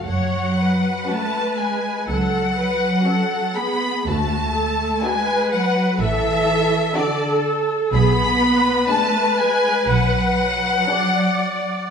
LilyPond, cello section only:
\new Staff \with { instrumentName = "Cello section" } { \clef bass \time 4/4 \key fis \minor \tempo 4 = 61 fis4 a8 gis8 fis4. b8 | a4 gis8 fis8 e4 d8 r8 | b4 a8 gis8 fis2 | }